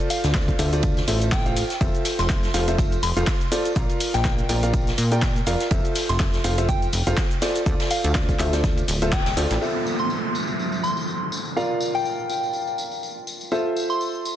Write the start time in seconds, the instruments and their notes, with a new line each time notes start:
Already playing: grand piano F4 A4 C5 D5
0.10 synth bell F5, open hi-hat, ride, tambourine, shaker
0.24 analog synth bass D2, snare, closed hi-hat, tambourine, shaker
0.34 grand piano F4 A4 D5, kick, snare, clap, closed hi-hat, ride, tambourine, shaker
0.48 kick, closed hi-hat, shaker
0.59 analog synth bass D2, grand piano F4 A4 C5 E5, open hi-hat, ride, tambourine, shaker
0.72 grand piano F4 A4 C5 D5, closed hi-hat, tambourine, shaker
0.83 kick, closed hi-hat, ride, tambourine, shaker
0.97 snare, closed hi-hat, tambourine, shaker
1.07 analog synth bass A1, grand piano F4 A4 C5 E5, open hi-hat, ride, tambourine, shaker
1.21 closed hi-hat, tambourine, shaker
1.32 grand piano F4 A4, synth bell G5, kick, snare, clap, closed hi-hat, ride, tambourine, shaker
1.46 grand piano F4 A4 C5 F5, closed hi-hat, shaker
1.56 open hi-hat, ride, tambourine, shaker
1.70 snare, closed hi-hat, tambourine, shaker
1.81 analog synth bass F1, grand piano F4 A4 C5 E5, kick, closed hi-hat, ride, tambourine, shaker
1.95 closed hi-hat, shaker
2.05 snare, open hi-hat, ride, tambourine, shaker
2.19 analog synth bass F1, synth bell C6, snare, closed hi-hat, tambourine, shaker
2.29 grand piano F4 A4 C5 E5, kick, snare, clap, closed hi-hat, ride, tambourine, shaker
2.43 snare, closed hi-hat, shaker
2.54 analog synth bass F1, grand piano F4 A4 C5 F5, snare, open hi-hat, ride, tambourine, shaker
2.68 grand piano F4 A4 C5 E5, closed hi-hat, ride, tambourine, shaker
2.78 kick, closed hi-hat, ride, tambourine, shaker
2.92 closed hi-hat, tambourine, shaker
3.03 analog synth bass F1, synth bell C6, open hi-hat, ride, tambourine, shaker
3.17 analog synth bass F1, grand piano F4 A4 C5 F5, closed hi-hat, tambourine, shaker
3.27 kick, snare, clap, closed hi-hat, ride, tambourine, shaker
3.41 closed hi-hat, ride, shaker
3.52 grand piano F4 A4 C5 D5, open hi-hat, ride, tambourine, shaker
3.65 closed hi-hat, tambourine, shaker
3.75 analog synth bass A#1, grand piano F4 A#4 D5 F5, kick, closed hi-hat, ride, tambourine, shaker
3.89 closed hi-hat, ride, shaker
4.00 open hi-hat, ride, tambourine, shaker
4.14 analog synth bass A#1, synth bell G5, snare, closed hi-hat, tambourine, shaker
4.25 grand piano F4 A#4 D5 F5, kick, snare, clap, closed hi-hat, ride, tambourine, shaker
4.39 closed hi-hat, shaker
4.49 analog synth bass A#1, grand piano F4 A#4 D5 G5, open hi-hat, ride, tambourine, shaker
4.62 grand piano F4 A#4 D5 F5, closed hi-hat, tambourine, shaker
4.74 kick, closed hi-hat, ride, tambourine, shaker
4.87 snare, closed hi-hat, tambourine, shaker
4.98 analog synth bass A#2, open hi-hat, ride, tambourine, shaker
5.11 grand piano F4 A#4 D5 G5, closed hi-hat, tambourine, shaker
5.22 kick, snare, clap, closed hi-hat, ride, tambourine, shaker
5.36 closed hi-hat, shaker
5.46 analog synth bass F1, grand piano F4 A#4 D5 F5, open hi-hat, ride, tambourine, shaker
5.60 snare, closed hi-hat, tambourine, shaker
5.71 analog synth bass F1, grand piano F4 A4 C5 E5, kick, closed hi-hat, ride, tambourine, shaker
5.85 closed hi-hat, shaker
5.96 snare, open hi-hat, ride, tambourine, shaker
6.09 analog synth bass F1, synth bell C6, snare, closed hi-hat, tambourine, shaker
6.19 grand piano F4 A4 C5 E5, kick, snare, clap, closed hi-hat, ride, tambourine, shaker
6.33 snare, closed hi-hat, shaker
6.44 analog synth bass F1, grand piano F4 A4 C5 F5, open hi-hat, ride, tambourine, shaker
6.58 grand piano F4 A4 C5 E5, closed hi-hat, ride, tambourine, shaker
6.69 synth bell G5, kick, closed hi-hat, ride, tambourine, shaker
6.82 closed hi-hat, tambourine, shaker
6.93 analog synth bass F1, open hi-hat, ride, tambourine, shaker
7.06 analog synth bass F1, grand piano F4 A4 C5 F5, closed hi-hat, tambourine, shaker
7.17 kick, snare, clap, closed hi-hat, ride, shaker
7.31 closed hi-hat, ride, shaker
7.42 grand piano F4 A4 C5 D5, snare, open hi-hat, ride, tambourine, shaker
7.55 closed hi-hat, tambourine, shaker
7.66 analog synth bass D2, grand piano F4 A4 C5 D5, kick, closed hi-hat, ride, tambourine, shaker
7.80 snare, closed hi-hat, ride, tambourine, shaker
7.91 synth bell F5, open hi-hat, tambourine, shaker
8.04 analog synth bass D2, closed hi-hat, ride, tambourine, shaker
8.14 grand piano F4, kick, snare, clap, closed hi-hat, ride, tambourine, shaker
8.29 kick, closed hi-hat, tambourine, shaker
8.39 analog synth bass D2, grand piano F4 A4 C5 E5, clap, open hi-hat, ride, tambourine, shaker
8.52 grand piano F4 A4 C5 D5, snare, closed hi-hat, tambourine, shaker
8.64 kick, snare, closed hi-hat, ride, tambourine, shaker
8.77 closed hi-hat, ride, tambourine, shaker
8.88 analog synth bass D1, open hi-hat, ride, tambourine, shaker
9.02 grand piano F4 A4 C5 E5, closed hi-hat, tambourine, shaker
9.13 synth bell G5, kick, snare, clap, closed hi-hat, tambourine, shaker
9.26 analog synth bass D1, snare, closed hi-hat, ride, tambourine, shaker
9.37 analog synth bass D2, grand piano F4 A4 C5 D5, open hi-hat, tambourine, shaker
9.51 analog synth bass A1, snare, closed hi-hat, ride, tambourine, shaker
9.61 grand piano F4 A4 C5 E5, tambourine, downlifter
9.86 tambourine
9.98 synth bell C6, tambourine
10.10 tambourine
10.35 tambourine
10.47 tambourine
10.59 tambourine
10.72 tambourine
10.83 synth bell C6, tambourine
10.97 tambourine
11.07 tambourine
11.32 tambourine
11.45 tambourine
11.57 grand piano F4 A#4 D5 F5, tambourine
11.80 tambourine
11.95 synth bell G5, tambourine
12.05 tambourine
12.30 tambourine
12.43 tambourine
12.53 tambourine
12.67 tambourine
12.78 tambourine
12.91 tambourine
13.03 tambourine
13.27 tambourine
13.41 tambourine
13.52 grand piano F4 A4 C5 E5, tambourine
13.77 tambourine
13.90 synth bell C6, tambourine
14.01 tambourine
14.25 tambourine